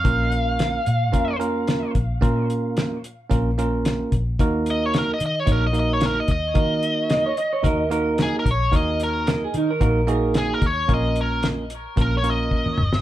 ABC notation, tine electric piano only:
X:1
M:4/4
L:1/8
Q:"Swing 16ths" 1/4=111
K:Bbm
V:1 name="Tine electric piano"
[B,DFB]3 z [B,DFB] [B,DFB]2 z | [B,DFB]3 z [B,DFB] [B,DFB]2 z | [B,EGB]3 z [B,EGd] [B,EGB]2 z | [B,EGB]3 z [B,EGB] [B,EGB]2 z |
[B,EGB]3 z [B,EGB] [B,EGA]2 z | [B,DFB]3 z [B,DFB] [B,DFB]2 z |]